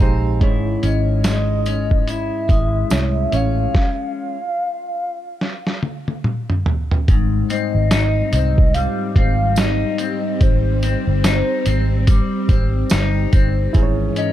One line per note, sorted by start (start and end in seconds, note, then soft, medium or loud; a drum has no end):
0.00 0.41 A#1 medium
0.00 0.40 G#2 medium
0.00 0.41 G#3 medium
0.00 0.52 C4 medium
0.00 0.42 D#4 medium
0.00 0.43 D#4 medium
0.00 0.02 G4 medium
0.00 0.35 G4 medium
0.00 0.03 C5 medium
0.00 0.36 C5 medium
0.00 0.43 D#5 medium
0.00 0.44 F5 medium
0.00 0.43 G5 medium
0.00 0.43 G#5 medium
0.00 0.39 A#5 medium
0.41 0.75 G#1 medium
0.41 3.75 G#2 medium
0.41 1.72 G#3 medium
0.41 1.72 C#4 medium
0.41 2.08 E4 medium
0.41 1.73 E4 medium
0.41 1.73 C#5 medium
0.41 kick medium
0.41 closed hi-hat medium
0.83 2.29 G#1 medium
0.83 1.67 C#4 medium
0.83 2.11 D#5 loud
0.83 closed hi-hat medium
0.83 tambourine soft
1.24 2.49 G#3 medium
1.24 snare loud
1.24 closed hi-hat medium
1.24 tambourine medium
1.66 3.33 C#4 medium
1.66 closed hi-hat medium
1.66 tambourine soft
1.91 kick medium
2.08 2.92 E4 medium
2.08 3.37 E5 loud
2.08 closed hi-hat medium
2.08 tambourine soft
2.49 2.83 G#1 medium
2.49 4.35 G#3 medium
2.49 kick medium
2.49 closed hi-hat medium
2.49 tambourine soft
2.90 3.25 C2 medium
2.90 3.25 G#3 medium
2.90 3.25 C#4 medium
2.90 3.26 E4 medium
2.90 3.26 C#5 medium
2.90 snare loud
2.90 closed hi-hat medium
2.90 tambourine medium
3.32 3.66 A1 medium
3.32 3.68 E3 medium
3.32 3.67 G#3 medium
3.32 3.67 C#4 medium
3.32 4.35 C#4 medium
3.32 3.68 C#5 medium
3.32 closed hi-hat medium
3.32 tambourine soft
3.36 6.26 F5 loud
3.75 kick loud
3.75 snare medium
5.41 snare medium
5.67 snare medium
5.83 high tom medium
6.08 high tom medium
6.24 mid tom medium
6.50 mid tom medium
6.66 floor tom loud
6.91 floor tom medium
7.08 7.42 G#1 loud
7.08 10.42 G#2 medium
7.08 13.72 G3 medium
7.08 13.71 C4 medium
7.08 kick loud
7.08 closed hi-hat medium
7.08 tambourine soft
7.50 8.33 C4 medium
7.50 8.29 D#5 loud
7.50 closed hi-hat medium
7.50 tambourine soft
7.75 8.21 G#1 medium
7.91 9.58 D#4 medium
7.91 snare loud
7.91 closed hi-hat loud
7.91 tambourine medium
8.32 8.86 C2 medium
8.32 9.16 C4 medium
8.32 8.76 D#5 loud
8.32 closed hi-hat medium
8.32 tambourine soft
8.58 kick medium
8.74 12.07 G3 medium
8.74 9.15 F5 loud
8.74 closed hi-hat medium
8.74 tambourine soft
9.16 9.83 G#1 medium
9.16 9.98 C4 medium
9.16 9.61 F5 loud
9.16 kick medium
9.16 closed hi-hat medium
9.56 11.24 D#4 medium
9.56 10.42 D#5 loud
9.56 snare loud
9.56 closed hi-hat medium
9.56 tambourine loud
9.98 10.83 C4 medium
9.98 closed hi-hat medium
9.98 tambourine soft
10.41 10.94 G#1 loud
10.41 12.88 C5 loud
10.41 kick loud
10.41 closed hi-hat medium
10.41 tambourine soft
10.83 11.66 C4 medium
10.83 closed hi-hat medium
10.83 tambourine soft
11.07 11.41 G1 medium
11.24 12.90 D#4 medium
11.24 snare loud
11.24 closed hi-hat loud
11.24 tambourine medium
11.66 12.20 G#1 loud
11.66 12.48 C4 medium
11.66 closed hi-hat medium
11.66 tambourine soft
12.07 13.85 G3 medium
12.07 kick medium
12.07 closed hi-hat medium
12.07 tambourine soft
12.49 12.82 G#1 loud
12.49 13.32 C4 medium
12.49 kick loud
12.49 closed hi-hat medium
12.49 tambourine soft
12.90 13.25 G1 medium
12.90 13.85 D#4 medium
12.90 snare loud
12.90 closed hi-hat medium
12.90 tambourine medium
13.33 13.66 G1 loud
13.33 13.85 C4 medium
13.33 kick loud
13.33 closed hi-hat medium
13.33 tambourine soft
13.73 14.08 G#1 loud
13.73 14.33 G#2 medium
13.73 14.33 E3 medium
13.73 14.33 C#4 medium
13.73 14.33 E4 medium
13.73 14.33 G#4 medium
13.73 13.83 C5 medium
13.73 kick loud
13.73 closed hi-hat medium
13.73 tambourine soft
13.83 14.33 C#5 loud
14.16 14.33 C#4 medium
14.16 14.33 D#5 loud
14.16 closed hi-hat medium
14.16 tambourine soft